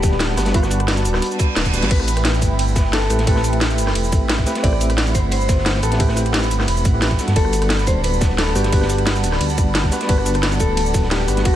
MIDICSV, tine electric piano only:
0, 0, Header, 1, 2, 480
1, 0, Start_track
1, 0, Tempo, 340909
1, 766, Time_signature, 4, 2, 24, 8
1, 16274, End_track
2, 0, Start_track
2, 0, Title_t, "Tine electric piano"
2, 0, Program_c, 0, 4
2, 0, Control_c, 0, 64, 127
2, 0, Note_on_c, 0, 55, 85
2, 0, Note_on_c, 0, 59, 76
2, 0, Note_on_c, 0, 62, 75
2, 0, Note_on_c, 0, 66, 82
2, 0, Note_on_c, 0, 71, 93
2, 0, Note_on_c, 0, 78, 77
2, 487, Note_off_c, 0, 55, 0
2, 494, Note_off_c, 0, 59, 0
2, 498, Note_off_c, 0, 62, 0
2, 503, Note_off_c, 0, 78, 0
2, 509, Note_off_c, 0, 71, 0
2, 515, Note_on_c, 0, 55, 86
2, 523, Note_on_c, 0, 59, 80
2, 525, Note_on_c, 0, 62, 80
2, 533, Note_off_c, 0, 66, 0
2, 533, Note_on_c, 0, 66, 80
2, 536, Note_on_c, 0, 71, 97
2, 729, Note_off_c, 0, 55, 0
2, 736, Note_off_c, 0, 59, 0
2, 738, Note_off_c, 0, 62, 0
2, 742, Note_off_c, 0, 66, 0
2, 743, Note_off_c, 0, 71, 0
2, 746, Note_on_c, 0, 55, 85
2, 756, Note_on_c, 0, 59, 77
2, 765, Note_on_c, 0, 62, 78
2, 777, Note_on_c, 0, 66, 77
2, 787, Note_on_c, 0, 71, 93
2, 2408, Note_off_c, 0, 55, 0
2, 2413, Note_off_c, 0, 59, 0
2, 2417, Note_off_c, 0, 62, 0
2, 2423, Note_off_c, 0, 66, 0
2, 2428, Note_off_c, 0, 71, 0
2, 2435, Note_on_c, 0, 55, 86
2, 2438, Note_on_c, 0, 59, 80
2, 2446, Note_on_c, 0, 62, 80
2, 2448, Note_on_c, 0, 66, 78
2, 2456, Note_on_c, 0, 71, 95
2, 2652, Note_off_c, 0, 55, 0
2, 2654, Note_off_c, 0, 59, 0
2, 2658, Note_off_c, 0, 62, 0
2, 2659, Note_off_c, 0, 66, 0
2, 2663, Note_off_c, 0, 71, 0
2, 2663, Note_on_c, 0, 57, 83
2, 2674, Note_on_c, 0, 60, 75
2, 2694, Note_on_c, 0, 67, 76
2, 2700, Control_c, 0, 64, 0
2, 2989, Control_c, 0, 64, 127
2, 4326, Note_off_c, 0, 57, 0
2, 4332, Note_off_c, 0, 60, 0
2, 4342, Note_off_c, 0, 67, 0
2, 4358, Note_on_c, 0, 57, 87
2, 4362, Note_on_c, 0, 60, 80
2, 4369, Note_on_c, 0, 64, 80
2, 4374, Note_on_c, 0, 67, 80
2, 4380, Note_on_c, 0, 71, 95
2, 4574, Note_off_c, 0, 57, 0
2, 4576, Note_off_c, 0, 60, 0
2, 4580, Note_off_c, 0, 64, 0
2, 4582, Note_off_c, 0, 67, 0
2, 4585, Note_off_c, 0, 71, 0
2, 4592, Note_on_c, 0, 57, 83
2, 4603, Note_on_c, 0, 60, 79
2, 4612, Note_on_c, 0, 64, 80
2, 4624, Note_on_c, 0, 67, 80
2, 4633, Note_on_c, 0, 71, 95
2, 6251, Note_off_c, 0, 57, 0
2, 6256, Note_off_c, 0, 60, 0
2, 6261, Note_off_c, 0, 64, 0
2, 6267, Note_off_c, 0, 67, 0
2, 6271, Note_off_c, 0, 71, 0
2, 6282, Note_on_c, 0, 57, 88
2, 6287, Note_on_c, 0, 60, 81
2, 6292, Note_on_c, 0, 64, 80
2, 6297, Note_on_c, 0, 67, 80
2, 6301, Note_on_c, 0, 71, 97
2, 6496, Note_off_c, 0, 57, 0
2, 6498, Note_off_c, 0, 60, 0
2, 6501, Note_off_c, 0, 64, 0
2, 6503, Note_off_c, 0, 67, 0
2, 6505, Note_off_c, 0, 71, 0
2, 6513, Note_on_c, 0, 57, 88
2, 6524, Note_on_c, 0, 60, 79
2, 6535, Note_on_c, 0, 64, 80
2, 6543, Note_on_c, 0, 67, 77
2, 6553, Note_on_c, 0, 72, 93
2, 8172, Note_off_c, 0, 57, 0
2, 8177, Note_off_c, 0, 60, 0
2, 8182, Note_off_c, 0, 64, 0
2, 8187, Note_off_c, 0, 67, 0
2, 8191, Note_off_c, 0, 72, 0
2, 8199, Note_on_c, 0, 57, 87
2, 8203, Note_on_c, 0, 60, 80
2, 8209, Note_on_c, 0, 64, 79
2, 8212, Note_on_c, 0, 67, 79
2, 8219, Note_on_c, 0, 71, 98
2, 8411, Note_off_c, 0, 57, 0
2, 8416, Note_off_c, 0, 60, 0
2, 8419, Note_off_c, 0, 64, 0
2, 8421, Note_off_c, 0, 67, 0
2, 8424, Note_off_c, 0, 71, 0
2, 8427, Note_on_c, 0, 57, 85
2, 8436, Note_on_c, 0, 60, 78
2, 8448, Note_on_c, 0, 64, 78
2, 8459, Note_on_c, 0, 67, 79
2, 8468, Note_on_c, 0, 71, 92
2, 9736, Note_off_c, 0, 57, 0
2, 9740, Note_off_c, 0, 60, 0
2, 9746, Note_off_c, 0, 64, 0
2, 9752, Note_off_c, 0, 67, 0
2, 9756, Note_off_c, 0, 71, 0
2, 9759, Note_on_c, 0, 57, 93
2, 9764, Note_on_c, 0, 60, 88
2, 9770, Note_on_c, 0, 64, 88
2, 9775, Note_on_c, 0, 67, 87
2, 9779, Note_on_c, 0, 71, 105
2, 9823, Note_off_c, 0, 57, 0
2, 9826, Note_off_c, 0, 60, 0
2, 9828, Note_off_c, 0, 64, 0
2, 9831, Note_off_c, 0, 67, 0
2, 9833, Note_off_c, 0, 71, 0
2, 10115, Note_on_c, 0, 55, 87
2, 10120, Note_on_c, 0, 59, 78
2, 10126, Note_on_c, 0, 62, 81
2, 10131, Note_on_c, 0, 66, 80
2, 10138, Note_on_c, 0, 69, 97
2, 10140, Control_c, 0, 64, 0
2, 10332, Note_off_c, 0, 55, 0
2, 10335, Note_off_c, 0, 59, 0
2, 10338, Note_off_c, 0, 62, 0
2, 10340, Note_off_c, 0, 66, 0
2, 10344, Note_off_c, 0, 69, 0
2, 10347, Note_on_c, 0, 55, 83
2, 10350, Control_c, 0, 64, 127
2, 10356, Note_on_c, 0, 59, 79
2, 10367, Note_on_c, 0, 62, 77
2, 10376, Note_on_c, 0, 66, 75
2, 10389, Note_on_c, 0, 71, 95
2, 12008, Note_off_c, 0, 55, 0
2, 12013, Note_off_c, 0, 59, 0
2, 12018, Note_off_c, 0, 62, 0
2, 12023, Note_off_c, 0, 66, 0
2, 12029, Note_off_c, 0, 71, 0
2, 12033, Note_on_c, 0, 55, 87
2, 12041, Note_on_c, 0, 59, 82
2, 12045, Note_on_c, 0, 62, 79
2, 12051, Note_on_c, 0, 66, 80
2, 12056, Note_on_c, 0, 71, 95
2, 12244, Note_off_c, 0, 55, 0
2, 12255, Note_off_c, 0, 59, 0
2, 12257, Note_off_c, 0, 62, 0
2, 12260, Note_off_c, 0, 66, 0
2, 12261, Note_on_c, 0, 55, 87
2, 12263, Note_off_c, 0, 71, 0
2, 12273, Note_on_c, 0, 59, 76
2, 12281, Note_on_c, 0, 62, 79
2, 12292, Note_on_c, 0, 78, 78
2, 12304, Note_on_c, 0, 71, 94
2, 13926, Note_off_c, 0, 55, 0
2, 13931, Note_off_c, 0, 59, 0
2, 13936, Note_off_c, 0, 62, 0
2, 13941, Note_off_c, 0, 78, 0
2, 13947, Note_off_c, 0, 71, 0
2, 13960, Note_on_c, 0, 55, 88
2, 13964, Note_on_c, 0, 59, 82
2, 13969, Note_on_c, 0, 62, 80
2, 13976, Note_on_c, 0, 66, 81
2, 13980, Note_on_c, 0, 71, 99
2, 14175, Note_off_c, 0, 55, 0
2, 14177, Note_off_c, 0, 59, 0
2, 14180, Note_off_c, 0, 62, 0
2, 14183, Note_off_c, 0, 66, 0
2, 14185, Note_off_c, 0, 71, 0
2, 14191, Note_on_c, 0, 55, 86
2, 14198, Note_on_c, 0, 59, 78
2, 14209, Note_on_c, 0, 62, 78
2, 14218, Note_on_c, 0, 66, 77
2, 14229, Note_on_c, 0, 71, 96
2, 15850, Note_off_c, 0, 55, 0
2, 15854, Note_off_c, 0, 59, 0
2, 15859, Note_off_c, 0, 62, 0
2, 15864, Note_off_c, 0, 66, 0
2, 15869, Note_off_c, 0, 71, 0
2, 15880, Note_on_c, 0, 55, 89
2, 15887, Note_on_c, 0, 59, 79
2, 15891, Note_on_c, 0, 62, 79
2, 15897, Note_on_c, 0, 66, 79
2, 15902, Note_on_c, 0, 71, 99
2, 16095, Note_off_c, 0, 55, 0
2, 16099, Note_off_c, 0, 59, 0
2, 16100, Note_off_c, 0, 62, 0
2, 16103, Note_off_c, 0, 66, 0
2, 16106, Note_off_c, 0, 71, 0
2, 16109, Note_on_c, 0, 55, 88
2, 16120, Note_on_c, 0, 59, 78
2, 16130, Note_on_c, 0, 62, 79
2, 16140, Note_on_c, 0, 66, 76
2, 16151, Note_on_c, 0, 71, 93
2, 16274, Note_off_c, 0, 55, 0
2, 16274, Note_off_c, 0, 59, 0
2, 16274, Note_off_c, 0, 62, 0
2, 16274, Note_off_c, 0, 66, 0
2, 16274, Note_off_c, 0, 71, 0
2, 16274, End_track
0, 0, End_of_file